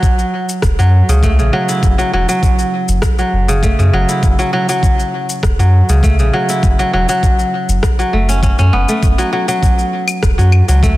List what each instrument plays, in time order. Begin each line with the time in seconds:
Already playing: kora F#3
0.03 kick, shaker
0.19 shaker
0.49 shaker
0.62 sub bass E1, kick, cross-stick, shaker
0.79 sub bass F#2, kora F#3, shaker
1.08 sub bass C#2, kora C#3, shaker
1.23 kora A3, kick, shaker
1.38 sub bass A1, kora C#3, shaker
1.53 kora F#3
1.69 kora E4, shaker
1.83 sub bass F#1, kick, shaker
1.98 kora F#3, shaker
2.13 sub bass E1, kora F#3
2.29 kora F#3, shaker
2.43 kick, shaker
2.59 shaker
2.88 sub bass F#1, shaker
3.02 kick, cross-stick, shaker
3.19 kora F#3, shaker
3.33 sub bass F#1
3.48 kora C#3, shaker
3.63 kora A3, kick, shaker
3.79 sub bass F#2, kora C#3, shaker
3.93 sub bass F#1, kora F#3
4.09 kora E4, shaker
4.23 sub bass F#1, kick, shaker
4.39 kora F#3, shaker
4.53 kora F#3
4.69 kora F#3, shaker
4.83 kick, shaker
5.00 shaker
5.29 shaker
5.43 sub bass E1, kick, cross-stick, shaker
5.59 sub bass F#2, kora F#3, shaker
5.89 sub bass C#2, kora C#3, shaker
6.03 kora A3, kick, shaker
6.19 sub bass A1, kora C#3, shaker
6.33 kora F#3
6.49 kora E4, shaker
6.63 sub bass F#1, kick, shaker
6.79 kora F#3, shaker
6.93 sub bass E1, kora F#3
7.09 kora F#3, shaker
7.23 kick, shaker
7.39 shaker
7.69 sub bass F#1, shaker
7.83 kick, cross-stick, shaker
7.99 kora F#3, shaker
8.13 sub bass F#1, kora A3
8.29 kora C#4, shaker
8.43 kora C#4, kick, shaker
8.59 sub bass F#2, kora C#4, shaker
8.73 sub bass F#1, kora B3
8.89 kora A3, shaker
9.03 sub bass F#1, kick, shaker
9.18 kora F#3, shaker
9.33 kora F#3
9.48 kora F#3, shaker
9.63 kick, shaker
9.79 shaker
10.08 claves, shaker
10.23 sub bass E1, kick, cross-stick, shaker
10.38 sub bass F#2, kora F#3, shaker
10.52 claves
10.68 sub bass C#2, kora F#3, shaker
10.83 kora A3, kick, shaker